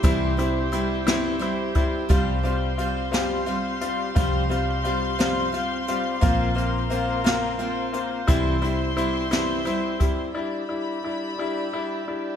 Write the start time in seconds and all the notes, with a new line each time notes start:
Already playing: G4 C5 E5 C6
0.03 C2 C3 E3 G3 C4 E4 C5, kick, closed hi-hat
0.37 G3 C4 E4 C5, closed hi-hat
0.72 G3 C4 E4 C5, closed hi-hat
1.06 C3 E3 G3 C4 E4 C5, snare, closed hi-hat
1.39 G3 C4 E4 C5, closed hi-hat
1.75 G3 C4 E4 C5, kick, closed hi-hat
2.09 C2 C3 F3 G3 C4 F4 G4 C5 F5 C6, kick, closed hi-hat
2.43 G3 C4 F4 G4 C5, closed hi-hat
2.78 G3 C4 F4 G4 C5, closed hi-hat
3.12 C3 F3 G3 C4 F4 G4 C5, snare, closed hi-hat
3.46 G3 C4 F4 G4 C5, closed hi-hat
3.81 G3 C4 F4 G4 C5, closed hi-hat
4.15 C2 C3 F3 G3 C4 F4 G4 C5, kick, closed hi-hat
4.49 G3 C4 F4 G4 C5, closed hi-hat
4.83 G3 C4 F4 G4 C5, closed hi-hat
5.19 C3 F3 G3 C4 F4 G4 C5, snare, closed hi-hat
5.52 G3 C4 F4 G4 C5, closed hi-hat
5.87 G3 C4 F4 G4 C5, closed hi-hat
6.21 A#1 A#3 C4 F4 A#4 C5, kick, closed hi-hat
6.55 A#3 C4 F4 C5, closed hi-hat
6.90 A#3 C4 F4 C5, closed hi-hat
7.24 A#3 C4 F4 C5, snare, closed hi-hat
7.58 A#3 C4 F4 C5, closed hi-hat
7.93 A#3 C4 F4 C5, closed hi-hat
8.27 C2 C3 E3 G3 C4 E4 G4 C5 E5 C6, kick, closed hi-hat
8.61 G3 C4 E4 C5, closed hi-hat
8.96 G3 C4 E4 C5, closed hi-hat
9.31 C3 E3 G3 C4 E4 C5, snare, closed hi-hat
9.65 G3 C4 E4 C5, closed hi-hat
9.99 G3 C4 E4 C5, kick, closed hi-hat
10.34 G3 D4 E4 G4 D5 E5 B5
10.69 G3 D4 E4
11.04 G3 D4 E4
11.38 G3 D4 E4
11.73 G3 D4 E4
12.07 G3 D4 E4